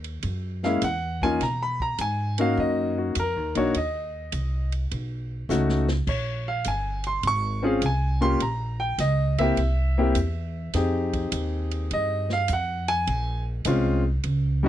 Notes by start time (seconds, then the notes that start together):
Already playing: D#2
0.04 ride
0.23 F#2, ride
0.63 G#3 A#3 C#4 E4 F5, snare
0.82 E2 F#5, hi-hat pedal, ride
1.22 A#3 C#4 D#4 F4 G#5, kick
1.41 B2 A#5, snare, ride
1.63 B5
1.80 A#5, kick
1.98 G#2 G#5, hi-hat pedal, ride
2.38 A#3 C#4 D#4 F#4 F5, ride
2.57 F#2 D#5
2.98 F#4
3.15 F2, hi-hat pedal, ride
3.19 A#4
3.36 D#2
3.55 B1 A#3 D4 D#4 F#4 C#5, ride
3.74 D#2 D#5, ride
4.32 C2, hi-hat pedal, ride
4.72 ride
4.91 B1, ride
5.49 C#2 A3 C#4 D#4 F#4, snare, hi-hat pedal
5.69 snare
5.88 snare
6.07 A#1 C#5, kick, crash
6.48 F5
6.64 G1 G#5, hi-hat pedal, ride
7.04 C6, ride
7.23 G#1, ride
7.27 C#6
7.62 C4 C#4 F4 G#4
7.67 F5
7.82 C2, hi-hat pedal, ride
7.86 G#5
8.21 A#3 C#4 F4 G4 C6
8.40 A#1 A#5, ride
8.80 G5
8.98 C#2 D#5, snare, hi-hat pedal, ride
9.38 A#3 C4 E4 G4 E5, kick, ride
9.57 C2, ride
9.98 A#3 C4 E4 G4
10.15 E2, hi-hat pedal, ride
10.74 F2 C4 D#4 G4 G#4, snare, ride
11.13 kick, ride
11.32 D#2, hi-hat pedal, ride
11.71 ride
11.91 G2 D#5, ride
12.30 F5, snare
12.48 F2, hi-hat pedal, ride
12.53 F#5
12.88 G#5, ride
13.07 A#1, ride
13.65 C2 G#3 C4 C#4 F4, hi-hat pedal, ride
14.24 C#2, ride
14.63 G3 C#4 D#4